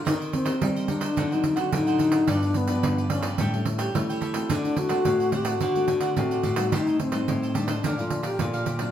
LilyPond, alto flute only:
\new Staff \with { instrumentName = "Alto flute" } { \time 4/4 \key g \minor \tempo 4 = 108 ees'8 c'4 d'8. ees'8 fis'16 ees'4 | d'8 b4 cis'8. r8 g'16 e'4 | d'8 fis'4 g'16 fis'4~ fis'16 fis'4 | ees'8 c'4 d'8. f'8 g'16 f'4 | }